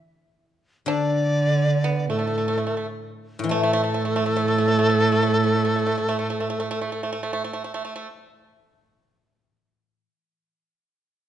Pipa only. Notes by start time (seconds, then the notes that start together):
0.88 D4
1.84 B3
2.10 A3
2.19 A3
2.27 A3
2.38 A3
2.48 A3
2.57 A3
2.67 A3
2.77 A3
3.51 A3
3.63 A3
3.73 A3
3.83 A3
3.94 A3
4.05 A3
4.16 A3
4.26 A3
4.37 A3
4.48 A3
4.58 A3
4.68 A3
4.79 A3
4.89 A3
5.00 A3
5.12 A3
5.23 A3
5.44 A3
5.55 A3
5.65 A3
5.76 A3
5.87 A3
5.98 A3
6.09 A3
6.19 A3
6.30 A3
6.40 A3
6.50 A3
6.60 A3
6.71 A3
6.81 A3
6.92 A3
7.03 A3
7.13 A3
7.23 A3
7.33 A3
7.44 A3
7.53 A3
7.64 A3
7.74 A3
7.85 A3
7.96 A3